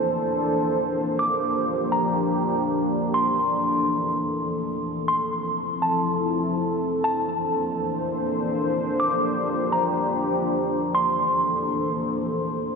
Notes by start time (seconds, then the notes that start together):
Already playing: E3 A#3 D4 A4 C5 A5
1.19 F3 D4 G4 D6
1.92 A#5
3.14 E3 A4 C6
5.08 F3 C4 E4 C6
5.82 A5
7.04 E3 A#3 D4 C5 A5
9.00 F3 G4 D6
9.72 A#5
10.95 E3 A#3 A4 C5 C6